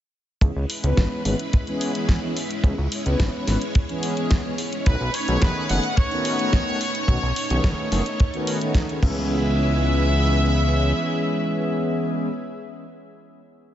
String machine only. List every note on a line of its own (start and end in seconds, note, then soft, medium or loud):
0.42 4.82 G#3 medium
0.42 8.99 C#4 medium
0.42 4.82 E4 medium
0.42 2.62 B4 medium
2.64 4.84 C#5 medium
4.86 8.99 A3 medium
4.86 8.99 D#4 medium
4.86 7.06 B4 medium
7.08 9.01 C#5 medium
9.03 12.29 G#3 medium
9.03 12.29 C#4 medium
9.03 12.29 E4 medium
9.03 12.29 B4 medium